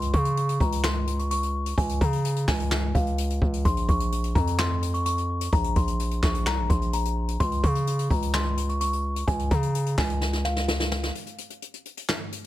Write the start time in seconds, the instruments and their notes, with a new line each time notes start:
Already playing: 808-style bass C#2, celesta C6
0.02 closed hi-hat
0.13 808-style bass C#3, celesta C#6, kick, closed hi-hat
0.25 closed hi-hat
0.37 closed hi-hat
0.49 closed hi-hat
0.60 808-style bass C#2, celesta A#5, kick, closed hi-hat
0.72 closed hi-hat
0.84 celesta C6, snare, clap
1.07 closed hi-hat
1.19 celesta C#6, closed hi-hat
1.31 celesta C#6, closed hi-hat
1.43 closed hi-hat
1.66 closed hi-hat
1.78 808-style bass C#2, celesta G#5, kick, closed hi-hat
1.89 closed hi-hat
2.01 808-style bass C#3, celesta A#5, kick, closed hi-hat
2.13 closed hi-hat
2.25 closed hi-hat
2.36 closed hi-hat
2.48 808-style bass C#2, celesta G#5, kick, snare, clap, open hi-hat
2.60 closed hi-hat
2.71 snare, clap
2.95 808-style bass C#2, celesta F5, kick, closed hi-hat
3.07 closed hi-hat
3.18 closed hi-hat
3.30 closed hi-hat
3.42 808-style bass C#2, kick
3.53 closed hi-hat
3.65 808-style bass A#1, celesta C6, kick, closed hi-hat
3.77 closed hi-hat
3.88 808-style bass A#1, celesta C#6, kick, closed hi-hat
4.00 closed hi-hat
4.12 closed hi-hat
4.24 closed hi-hat
4.35 808-style bass F2, celesta A#5, kick, closed hi-hat
4.47 closed hi-hat
4.59 celesta C6, snare, clap
4.82 closed hi-hat
4.94 celesta C#6, closed hi-hat
5.06 celesta C#6, closed hi-hat
5.18 closed hi-hat
5.41 closed hi-hat
5.53 808-style bass A#1, celesta A#5, kick, closed hi-hat
5.64 closed hi-hat
5.76 808-style bass A#1, celesta C6, kick, closed hi-hat
5.87 closed hi-hat
6.00 closed hi-hat
6.11 closed hi-hat
6.23 808-style bass A#1, celesta C#6, kick, snare, clap
6.35 closed hi-hat
6.46 808-style bass C2, celesta A#5, snare, clap
6.58 808-style bass A#1
6.70 808-style bass A#1, celesta C6, kick, closed hi-hat
6.82 closed hi-hat
6.93 celesta A#5, closed hi-hat
7.05 closed hi-hat
7.28 closed hi-hat
7.40 808-style bass C#2, celesta C6, kick, closed hi-hat
7.52 closed hi-hat
7.63 808-style bass C#3, celesta C#6, kick, closed hi-hat
7.75 closed hi-hat
7.87 closed hi-hat
7.99 closed hi-hat
8.10 808-style bass C#2, celesta A#5, kick, closed hi-hat
8.22 closed hi-hat
8.34 celesta C6, snare, clap
8.57 closed hi-hat
8.69 celesta C#6, closed hi-hat
8.81 celesta C#6, closed hi-hat
8.93 closed hi-hat
9.16 closed hi-hat
9.27 808-style bass C#2, celesta G#5, kick, closed hi-hat
9.39 closed hi-hat
9.51 808-style bass C#3, celesta A#5, kick, closed hi-hat
9.63 closed hi-hat
9.75 closed hi-hat
9.86 closed hi-hat
9.98 808-style bass C#2, celesta G#5, kick, snare, clap, open hi-hat
10.10 closed hi-hat
10.21 snare
10.33 snare
10.45 celesta F5, snare
10.57 snare
10.68 snare
10.80 snare
10.92 snare
11.03 snare
11.15 closed hi-hat
11.27 closed hi-hat
11.38 closed hi-hat
11.50 closed hi-hat
11.62 closed hi-hat
11.74 closed hi-hat
11.85 closed hi-hat
11.97 closed hi-hat
12.09 snare, clap
12.32 closed hi-hat